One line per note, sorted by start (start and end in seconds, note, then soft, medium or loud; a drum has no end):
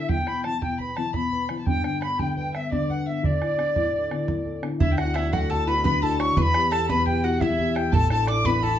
0.00 0.11 E5 medium
0.08 1.63 E2 medium
0.08 0.45 G5 medium
0.08 0.29 G5 loud
0.08 bodhran medium
0.27 0.44 B2 medium
0.27 0.45 B5 medium
0.27 bodhran medium
0.44 0.62 E3 soft
0.44 0.63 A5 medium
0.44 0.61 A5 medium
0.44 bodhran medium
0.61 1.13 B2 medium
0.61 0.79 G5 medium
0.61 0.78 G5 medium
0.61 bodhran medium
0.78 0.97 B4 soft
0.78 0.97 B5 medium
0.78 0.98 B5 medium
0.78 bodhran soft
0.96 1.14 E3 medium
0.96 1.15 A5 medium
0.96 1.14 A5 medium
0.96 bodhran medium
1.13 1.65 B2 medium
1.13 1.58 B5 medium
1.13 1.43 B5 loud
1.13 bodhran medium
1.32 1.49 B4 medium
1.32 bodhran soft
1.49 1.66 E3 soft
1.49 bodhran medium
1.59 1.68 A5 medium
1.66 3.20 G2 medium
1.66 2.02 G5 medium
1.66 1.83 G5 loud
1.66 bodhran medium
1.84 2.01 D3 medium
1.84 2.01 G5 medium
1.84 bodhran medium
2.01 2.19 B5 medium
2.01 2.21 B5 medium
2.01 bodhran medium
2.19 2.71 D3 medium
2.19 2.35 G5 medium
2.19 2.37 G5 medium
2.19 bodhran medium
2.37 2.54 B4 medium
2.37 2.53 G5 medium
2.37 2.57 G5 medium
2.37 bodhran soft
2.53 2.71 B3 medium
2.53 2.70 E5 medium
2.53 2.74 E5 medium
2.53 bodhran medium
2.71 3.23 D3 medium
2.71 2.91 D5 medium
2.71 2.89 D5 medium
2.71 bodhran medium
2.89 3.06 B4 medium
2.89 3.05 F#5 medium
2.89 3.08 F#5 medium
2.89 bodhran soft
3.06 3.23 B3 soft
3.06 3.25 E5 medium
3.06 3.27 E5 medium
3.23 4.76 D2 medium
3.23 4.63 D5 medium
3.23 4.64 D5 loud
3.23 bodhran medium
3.41 3.58 A2 soft
3.41 bodhran medium
3.58 3.75 D3 soft
3.58 bodhran medium
3.76 4.27 A2 medium
3.76 bodhran medium
3.94 4.10 A4 soft
3.94 bodhran soft
4.11 4.28 D3 medium
4.11 bodhran medium
4.28 4.79 A2 medium
4.28 bodhran medium
4.45 4.62 A4 medium
4.45 bodhran soft
4.62 4.79 D3 medium
4.62 bodhran medium
4.80 6.34 D2 medium
4.80 5.83 D3 medium
4.80 4.97 E4 medium
4.80 4.97 E5 loud
4.80 4.92 E5 medium
4.80 bodhran medium
4.91 5.00 G5 medium
4.97 5.14 D4 medium
4.97 5.14 E4 medium
4.97 5.14 F#4 medium
4.97 5.32 F#5 medium
4.97 5.17 F#5 loud
4.97 bodhran medium
5.14 5.47 D4 medium
5.14 5.31 E4 medium
5.14 5.47 E4 soft
5.14 5.48 F#4 medium
5.14 5.35 E5 medium
5.14 bodhran medium
5.32 6.33 A3 medium
5.32 5.49 F#4 medium
5.32 5.51 F#5 medium
5.32 5.52 F#5 medium
5.32 bodhran medium
5.49 5.66 D4 soft
5.49 5.66 E4 soft
5.49 5.66 F#4 medium
5.49 5.66 A4 medium
5.49 5.69 A5 medium
5.49 5.67 A5 loud
5.49 bodhran soft
5.67 6.01 D4 medium
5.67 6.01 E4 soft
5.67 6.01 F#4 medium
5.67 5.83 B4 medium
5.67 5.84 B5 loud
5.84 6.35 D3 medium
5.84 6.01 B4 medium
5.84 6.03 B5 loud
5.84 6.01 B5 loud
5.84 bodhran medium
6.02 6.17 D4 medium
6.02 6.17 E4 medium
6.02 6.18 F#4 medium
6.02 6.19 A4 medium
6.02 6.22 A5 medium
6.02 6.19 A5 loud
6.02 bodhran soft
6.19 6.36 D4 soft
6.19 6.36 E4 soft
6.19 6.36 F#4 medium
6.19 6.36 C#5 medium
6.19 6.38 C#6 loud
6.19 6.39 C#6 loud
6.19 bodhran medium
6.37 7.90 E2 medium
6.37 7.40 E3 medium
6.37 6.71 B4 medium
6.37 6.73 B5 loud
6.37 6.43 C#6 loud
6.37 bodhran medium
6.42 6.74 B5 loud
6.54 6.69 B3 medium
6.54 6.70 E4 soft
6.54 6.70 G4 medium
6.54 bodhran medium
6.70 7.04 B3 medium
6.70 7.05 E4 soft
6.70 7.05 G4 medium
6.70 6.89 A4 medium
6.70 6.90 A5 medium
6.70 6.89 A5 loud
6.70 bodhran medium
6.88 7.90 B2 medium
6.88 7.22 B4 medium
6.88 7.07 B5 loud
6.88 7.06 B5 loud
6.88 bodhran medium
7.06 7.21 B3 medium
7.06 7.22 E4 soft
7.06 7.22 G4 medium
7.06 7.25 G5 medium
7.06 7.26 G5 loud
7.06 bodhran soft
7.23 7.57 B3 medium
7.23 7.57 E4 medium
7.23 7.42 F#4 medium
7.23 7.58 G4 medium
7.23 7.40 F#5 medium
7.23 7.42 F#5 loud
7.40 7.92 E3 medium
7.40 7.90 E4 medium
7.40 7.76 E5 medium
7.40 7.70 E5 loud
7.40 bodhran loud
7.59 7.75 B3 medium
7.59 7.75 E4 medium
7.59 7.76 G4 medium
7.59 bodhran soft
7.75 7.93 B3 soft
7.75 7.93 E4 soft
7.75 7.93 G4 medium
7.75 7.94 G5 loud
7.75 bodhran medium
7.92 8.79 A1 medium
7.92 8.79 A3 medium
7.92 8.10 A4 medium
7.92 8.10 A5 medium
7.92 8.11 A5 loud
7.92 bodhran loud
8.10 8.27 D4 soft
8.10 8.27 E4 medium
8.10 8.28 A4 medium
8.10 8.27 A4 medium
8.10 8.27 A5 medium
8.10 8.29 A5 loud
8.10 bodhran medium
8.27 8.62 D4 medium
8.27 8.62 E4 soft
8.27 8.62 A4 medium
8.27 8.45 D5 loud
8.27 8.47 D6 loud
8.27 bodhran medium
8.45 8.79 E3 medium
8.45 8.61 B4 loud
8.45 8.79 B5 loud
8.45 8.65 B5 loud
8.45 bodhran medium
8.63 8.79 D4 medium
8.63 8.79 E4 soft
8.63 8.78 A4 medium
8.63 8.79 A4 medium
8.63 8.79 A5 loud
8.63 bodhran soft